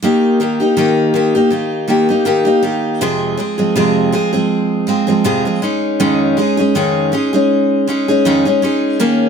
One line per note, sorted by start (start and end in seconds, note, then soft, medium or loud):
0.02 0.39 D#3 medium
0.02 0.39 A#3 medium
0.02 0.40 D#4 medium
0.02 0.41 G4 medium
0.40 0.60 D#3 medium
0.40 0.61 A#3 medium
0.40 0.60 D#4 medium
0.40 0.59 G4 medium
0.60 0.76 A#3 soft
0.60 0.77 D#4 soft
0.60 0.77 G4 medium
0.77 1.13 D#3 medium
0.77 1.14 A#3 medium
0.77 1.15 D#4 medium
0.77 1.15 G4 medium
1.14 1.35 D#3 medium
1.14 1.35 A#3 medium
1.14 1.35 D#4 medium
1.14 1.34 G4 medium
1.35 1.50 A#3 soft
1.35 1.51 D#4 soft
1.35 1.52 G4 medium
1.50 1.86 D#3 medium
1.50 1.87 A#3 medium
1.50 1.88 D#4 medium
1.50 1.89 G4 medium
1.88 2.09 D#3 medium
1.88 2.09 A#3 medium
1.88 2.09 D#4 medium
1.88 2.08 G4 medium
2.09 2.25 A#3 soft
2.09 2.25 D#4 soft
2.09 2.26 G4 medium
2.25 2.46 D#3 medium
2.25 2.46 A#3 medium
2.25 2.45 D#4 medium
2.25 2.44 G4 medium
2.45 2.62 A#3 soft
2.45 2.63 D#4 soft
2.45 2.63 G4 medium
2.63 3.01 D#3 medium
2.63 3.01 A#3 medium
2.63 3.02 D#4 medium
2.63 3.02 G4 medium
3.01 3.39 F2 medium
3.01 3.39 C3 medium
3.01 3.36 F3 medium
3.01 3.37 G#3 medium
3.01 3.38 C4 medium
3.01 3.39 G#4 medium
3.38 3.59 F3 medium
3.38 3.58 G#3 medium
3.38 3.58 C4 medium
3.38 3.57 G#4 medium
3.58 3.75 F3 soft
3.58 3.76 G#3 soft
3.58 3.76 C4 soft
3.58 3.75 G#4 soft
3.76 4.13 F2 medium
3.76 4.13 C3 medium
3.76 4.11 F3 medium
3.76 4.12 G#3 medium
3.76 4.13 C4 medium
3.76 4.14 G#4 medium
4.12 4.34 F3 medium
4.12 4.33 G#3 medium
4.12 4.32 C4 medium
4.12 4.31 G#4 medium
4.33 4.86 F3 soft
4.33 4.87 G#3 soft
4.33 4.88 C4 medium
4.33 4.88 G#4 medium
4.87 5.08 F3 medium
4.87 5.07 G#3 medium
4.87 5.07 C4 medium
4.87 5.06 G#4 medium
5.07 5.24 F3 soft
5.07 5.24 G#3 soft
5.07 5.25 C4 medium
5.07 5.25 G#4 medium
5.24 5.46 F2 medium
5.24 5.46 C3 medium
5.24 5.46 F3 medium
5.24 5.46 G#3 medium
5.24 5.45 C4 medium
5.24 5.44 G#4 medium
5.45 5.62 F3 soft
5.45 5.61 G#3 soft
5.45 5.63 C4 soft
5.45 5.63 G#4 soft
5.62 5.99 G#3 medium
5.62 5.99 C#4 medium
5.62 6.00 D#4 medium
5.62 6.00 G#4 medium
6.00 6.37 F2 medium
6.00 6.37 D#3 medium
6.00 6.36 G#3 medium
6.00 6.37 C#4 medium
6.00 6.37 D#4 medium
6.00 6.38 G#4 medium
6.37 6.58 G#3 medium
6.37 6.58 C#4 medium
6.37 6.57 D#4 medium
6.37 6.56 G#4 medium
6.57 6.74 G#3 soft
6.57 6.75 C#4 soft
6.57 6.75 D#4 soft
6.57 6.75 G#4 medium
6.75 7.12 F2 medium
6.75 7.13 D#3 medium
6.75 7.11 G#3 medium
6.75 7.12 C#4 medium
6.75 7.13 D#4 medium
6.75 7.13 G#4 medium
7.12 7.33 G#3 medium
7.12 7.33 C#4 medium
7.12 7.33 D#4 medium
7.12 7.32 G#4 medium
7.33 7.86 G#3 soft
7.33 7.87 C#4 medium
7.33 7.88 D#4 medium
7.33 7.87 G#4 medium
7.88 8.08 G#3 medium
7.88 8.08 C#4 medium
7.88 8.08 D#4 medium
7.88 8.07 G#4 medium
8.08 8.25 G#3 soft
8.08 8.25 C#4 medium
8.08 8.25 D#4 medium
8.08 8.25 G#4 medium
8.25 8.45 F2 medium
8.25 8.46 D#3 medium
8.25 8.46 G#3 medium
8.25 8.46 C#4 medium
8.25 8.45 D#4 medium
8.25 8.44 G#4 medium
8.45 8.61 G#3 soft
8.45 8.62 C#4 soft
8.45 8.62 D#4 soft
8.45 8.62 G#4 medium
8.62 8.99 G#3 medium
8.62 8.99 C#4 medium
8.62 9.00 D#4 medium
8.62 9.00 G#4 medium
9.00 9.29 D#3 medium
9.00 9.29 A#3 medium
9.00 9.29 C#4 medium
9.00 9.29 G#4 medium